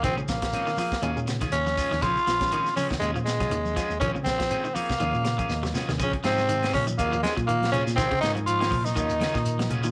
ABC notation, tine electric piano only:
X:1
M:4/4
L:1/16
Q:"Swing 16ths" 1/4=121
K:Bbm
V:1 name="Tine electric piano" clef=bass
B,,, z B,,,2 z4 E,, B,,2 z E,,2 z E,, | B,,, z B,,,2 z4 E,, B,,2 z E,,2 z E,, | B,,, z B,,,2 z4 E,, B,,2 z E,,2 z E,, | B,,, B,,, A,,4 B,,2 E,,2 z B,,4 B,, |
B,,, B,,, A,,4 B,,2 E,,2 z B,,4 B,, |]